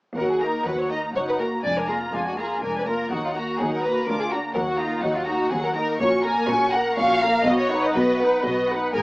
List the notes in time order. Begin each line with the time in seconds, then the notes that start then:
0.16 D#2 F#3 F#4 A#4 F#5
0.32 G#4
0.41 A#3 D#4 A#4 A#5
0.65 D#2 F#3 F#4 B4 F#5
0.80 C#5
0.91 A#3 D#4 D#5 A#5
1.15 F#1 F#2 F#3 D#4 C#5 F#5
1.28 B4
1.39 A#3 F#4 A#4 A#5
1.64 F1 F2 G#3 D4 D5 G#5
1.78 A#4
1.89 A#3 F4 G#4 A#5
2.13 F1 F2 G#3 D4 F4 G#5
2.27 F#4
2.37 A#3 F4 G#4 A#5
2.62 F1 F2 G#3 D4 A#4 G#5
2.77 B4
2.86 A#3 F4 A#4 A#5
3.11 D#2 F#3 D#4 F#4 F#5
3.24 F4
3.35 A#3 F#4 A#5
3.59 D#2 F#3 D#4 G#4 F#5
3.73 A#4
3.83 A#3 F#4 B4 A#5
4.06 D2 D4 F4 A#4 D6
4.20 G#4
4.30 A#3 D4 F#4 A#5
4.54 D#2 F#3 F#4 A#4 F#5
4.68 F#4
4.79 A#3 D#4 F4 A#5
5.02 D#2 F#3 D#4 F#4 F#5
5.16 F4
5.26 A#3 D#4 F#4 A#5
5.50 D#2 F#3 F#4 G#4 F#5
5.64 A#4
5.75 A#3 D#4 A#4 A#5
5.99 A#1 A#2 C#4 F#4 C#5 C#6
6.23 A#3 A#4 G#5 A#5
6.48 A#1 A#2 C#4 F#4 C#6
6.72 A#3 A#4 F#5 A#5
6.96 A#1 A#2 C#4 F#4 F5 C#6
7.22 A#3 A#4 A#5
7.45 B1 B2 B3 F#4 D#5
7.59 C#5
7.70 D#4 B4 F#5
7.84 D#5
7.94 B1 B2 B3 F#4 B4 D#5
8.19 D#4 B4 F#5
8.45 B1 B2 B3 F#4 D#5
8.70 D#4 B4 F#5
8.94 G#1 G#2 B3 G#4 A#4 G#5